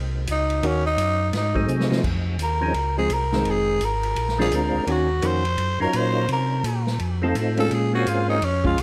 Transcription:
Already playing: C2
0.27 C#2, hi-hat pedal, ride
0.32 D#4
0.50 ride
0.63 D#2 D#3 A#3 C#4 F#4, ride
0.67 C#4
0.87 D#4
0.98 F#2, hi-hat pedal, ride
1.33 G#2, snare, ride
1.37 D#4
1.55 F#3 A3 C4 D#4 G#4, kick
1.68 C3, hi-hat pedal
1.80 snare
1.90 F3 G#3 C4, snare
2.04 F2, kick, crash
2.39 D#2, hi-hat pedal, ride
2.43 A#4
2.61 F3 C4 C#4 D#4 G#4
2.74 C#2, ride
2.97 F3 G#3 C4 G#4
3.10 C2, hi-hat pedal, ride
3.14 A#4
3.32 D#3 G#3 C4, snare
3.45 F1, ride
3.51 G#4
3.81 G#1, hi-hat pedal, ride
3.85 A#4
4.03 ride
4.16 A#1, ride
4.29 snare
4.38 F3 G#3 C4 D4 F4 G#4 A#4, snare
4.51 D2, hi-hat pedal, ride
4.56 A#4
4.74 D2
4.87 D#2 D#3 A#3 C#4 F#4, ride
4.91 F#4
5.22 F2 D#3 A#3 C#4 F#4, hi-hat pedal, ride
5.26 C5
5.45 ride
5.58 F#2, ride
5.80 F#2 F#3 C#4 D#4 F4 A#4
5.93 A#2 C5, hi-hat pedal, ride
6.28 C3, ride
6.33 A#4
6.64 A#2, hi-hat pedal, ride
6.87 snare
6.99 F2, ride
7.22 F3 A3 C4 D#4 F4 A4
7.35 A2, hi-hat pedal, ride
7.57 G#3 C#4 F4 A4, ride
7.71 A#2 G#4, ride
7.93 A#3 C4 C#4 F4 F#4 G#4
8.07 G#2 F4, hi-hat pedal, ride
8.29 D#4
8.42 F2 C#4, ride
8.64 G#3 C#4 F4, kick
8.78 C2, hi-hat pedal, ride

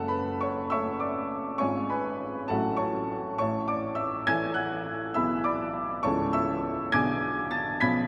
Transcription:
Already playing: F#1 F#2 A4 F#5 A5
0.08 B4 B5
0.41 C#5 C#6
0.70 A3 C#4 E5 C#6 E6
1.00 D5 D6
1.58 G#1 G#2 G#3 C#4 F4 C#5 G#5 C#6
1.89 B4 G#5 B5
2.48 A1 A2 F#3 C#4 F#4 A4 F#5 A5
2.77 C#5 A5 C#6
3.38 A1 A2 C#5 A5 C#6
3.68 D5 D6
3.95 E5 E6
4.27 E3 E4 A4 G#5 E6 G#6
4.54 F#5 F#6
5.14 B1 B2 E3 E4 G#4 E5 B5 E6
5.44 D5 B5 D6
6.03 C#1 C#2 E3 C#4 A4 C#5 A5 C#6
6.33 E5 C#6 E6
6.92 B1 B2 D3 D4 G#4 G#5 D6 G#6
7.51 A5 A6
7.80 B1 B2 F3 C#4 G#4 B5 G#6 B6

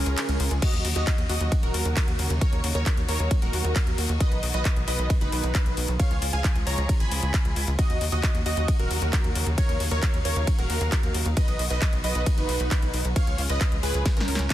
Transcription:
Already playing: C#3 F3 G#3 C#4 F4 G#4 A#4
0.06 C#2, closed hi-hat
0.18 clap, closed hi-hat, ride
0.29 C#2, closed hi-hat
0.40 C#2, open hi-hat
0.51 C#2, closed hi-hat
0.62 F#3 A#3 D#4 F#4 D#5, kick, closed hi-hat, crash, ride
0.73 D#2, closed hi-hat
0.85 D#2, open hi-hat
0.96 D#2 F#4 D#5, closed hi-hat
1.07 kick, clap, closed hi-hat, ride
1.18 D#2, closed hi-hat
1.29 D#2 F#4 D#5, open hi-hat
1.41 D#2, closed hi-hat
1.52 kick, closed hi-hat, ride
1.63 D#1 F#4 A#4, closed hi-hat
1.74 D#2, open hi-hat
1.85 D#2, closed hi-hat
1.97 kick, clap, closed hi-hat, ride
2.08 D#2, closed hi-hat
2.19 D#2, open hi-hat
2.30 D#2, closed hi-hat
2.41 A#4 C#5, kick, closed hi-hat, ride
2.53 D#2, closed hi-hat
2.64 D#2, open hi-hat
2.75 D#2 A#4 C#5, closed hi-hat
2.86 kick, clap, closed hi-hat, ride
2.97 D#2, closed hi-hat
3.09 D#2 A#4 C#5, open hi-hat
3.20 D#2, closed hi-hat
3.31 kick, closed hi-hat, ride
3.42 D#1 F#4 A#4, closed hi-hat
3.53 D#2, open hi-hat
3.65 D#2, closed hi-hat
3.76 kick, clap, closed hi-hat, ride
3.87 D#2, closed hi-hat
3.98 D#2, open hi-hat
4.09 D#2, closed hi-hat
4.20 B2 D#3 B4 D#5, kick, closed hi-hat, ride
4.32 B1, closed hi-hat
4.43 B1, open hi-hat
4.54 B1 B4 D#5, closed hi-hat
4.65 kick, clap, closed hi-hat, ride
4.76 B1, closed hi-hat
4.88 B1 B4 D#5, open hi-hat
4.99 B1, closed hi-hat
5.10 kick, closed hi-hat, ride
5.21 F#1 D#4 B4, closed hi-hat
5.32 B1, open hi-hat
5.44 B1, closed hi-hat
5.55 kick, clap, closed hi-hat, ride
5.66 B1, closed hi-hat
5.77 B1, open hi-hat
5.88 B1, closed hi-hat
6.00 C#3 F3 G#3 F4 G#4 C#5 F5, kick, closed hi-hat, ride
6.11 C#2, closed hi-hat
6.22 C#2, open hi-hat
6.33 C#2 F5 G#5, closed hi-hat
6.44 kick, clap, closed hi-hat, ride
6.56 C#2, closed hi-hat
6.67 C#2 C#5 A#5, open hi-hat
6.78 C#2, closed hi-hat
6.89 kick, closed hi-hat, ride
7.00 G#1 G#5 B5, closed hi-hat
7.11 C#2, open hi-hat
7.23 C#2, closed hi-hat
7.34 kick, clap, closed hi-hat, ride
7.45 C#2, closed hi-hat
7.56 C#2, open hi-hat
7.67 C#2, closed hi-hat
7.79 C#3 F#3 A#3 D#4 F#4 D#5, kick, closed hi-hat, ride
7.90 D#2, closed hi-hat
8.01 D#2, open hi-hat
8.12 D#2 F#4 D#5, closed hi-hat
8.23 kick, clap, closed hi-hat, ride
8.35 D#2, closed hi-hat
8.46 D#2 F#4 D#5, open hi-hat
8.57 D#2, closed hi-hat
8.68 kick, closed hi-hat, ride
8.79 D#1 F#4 A#4, closed hi-hat
8.91 D#2, open hi-hat
9.02 D#2, closed hi-hat
9.13 kick, clap, closed hi-hat, ride
9.24 D#2, closed hi-hat
9.35 D#2, open hi-hat
9.47 D#2, closed hi-hat
9.58 A#4 C#5 F5, kick, closed hi-hat, ride
9.69 D#2, closed hi-hat
9.80 D#2, open hi-hat
9.91 D#2 A#4 C#5, closed hi-hat
10.03 kick, clap, closed hi-hat, ride
10.14 D#2, closed hi-hat
10.25 D#2 A#4 C#5, open hi-hat
10.36 D#2, closed hi-hat
10.47 kick, closed hi-hat, ride
10.59 D#1 F#4 A#4, closed hi-hat
10.70 D#2, open hi-hat
10.81 D#2, closed hi-hat
10.92 kick, clap, closed hi-hat, ride
11.03 D#2, closed hi-hat
11.14 D#2, open hi-hat
11.26 D#2, closed hi-hat
11.37 B2 D#3 F#3 F#4 B4 D#5, kick, closed hi-hat, ride
11.48 B1, closed hi-hat
11.59 B1, open hi-hat
11.70 B1 B4 D#5, closed hi-hat
11.82 kick, clap, closed hi-hat, ride
11.93 B1, closed hi-hat
12.04 B1 B4 D#5, open hi-hat
12.15 B1, closed hi-hat
12.26 kick, closed hi-hat, ride
12.38 F#1 D#4 B4, closed hi-hat
12.49 B1, open hi-hat
12.60 B1, closed hi-hat
12.71 kick, clap, closed hi-hat, ride
12.82 B1, closed hi-hat
12.94 B1, open hi-hat
13.05 B1, closed hi-hat
13.16 G#2 C#3 F3 C#4 F4 C#5 F5, kick, closed hi-hat, ride
13.27 C#2, closed hi-hat
13.38 C#2, open hi-hat
13.50 C#2 B4 D#5, closed hi-hat
13.61 kick, clap, closed hi-hat, ride
13.72 C#2, closed hi-hat
13.83 C#2 G#4 B4, open hi-hat
13.94 C#2, closed hi-hat
14.06 kick, snare, closed hi-hat, ride
14.17 G#1 C#4 A#4, snare, closed hi-hat
14.28 C#2, open hi-hat
14.35 C#2, snare, closed hi-hat
14.50 kick, snare, clap, closed hi-hat, ride

